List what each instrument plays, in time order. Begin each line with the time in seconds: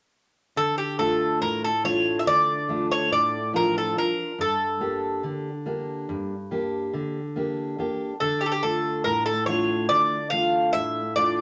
0.56 steel-string acoustic guitar D3, bouzouki A4
0.78 bouzouki G4
0.99 steel-string acoustic guitar A3 D4 F4, bouzouki A4
1.41 steel-string acoustic guitar A2, bouzouki A#4
1.64 bouzouki A4
1.84 steel-string acoustic guitar A3 D4 F4, bouzouki C#5
2.19 bouzouki E5
2.26 steel-string acoustic guitar D3, bouzouki D5
2.69 steel-string acoustic guitar A3 D4 F4
2.91 bouzouki C#5
3.11 steel-string acoustic guitar A2, bouzouki D5
3.53 steel-string acoustic guitar F3 D4 F4, bouzouki A#4
3.78 bouzouki A4
3.96 steel-string acoustic guitar D4 F4, bouzouki A#4
4.38 steel-string acoustic guitar G2, bouzouki A4
4.80 steel-string acoustic guitar A#3 D4 G4
5.23 steel-string acoustic guitar D3
5.66 steel-string acoustic guitar A#3 D4 G4
6.09 steel-string acoustic guitar G2
6.51 steel-string acoustic guitar A#3 D4 G4
6.93 steel-string acoustic guitar D3
7.36 steel-string acoustic guitar A#3 D4 G4
7.78 steel-string acoustic guitar A#3 D4 G4
8.20 steel-string acoustic guitar D3, bouzouki A4
8.41 bouzouki G4
8.46 bouzouki A4
8.52 bouzouki G4
8.63 steel-string acoustic guitar A3 D4 F4, bouzouki A4
9.04 steel-string acoustic guitar A2, bouzouki A#4
9.26 bouzouki A4
9.46 steel-string acoustic guitar A3 D4 F4, bouzouki C#5
9.89 steel-string acoustic guitar D3, bouzouki D5
10.30 steel-string acoustic guitar A3 D4 F4, bouzouki F5
10.73 steel-string acoustic guitar A2, bouzouki E5
11.16 steel-string acoustic guitar A3 D4 F4, bouzouki D5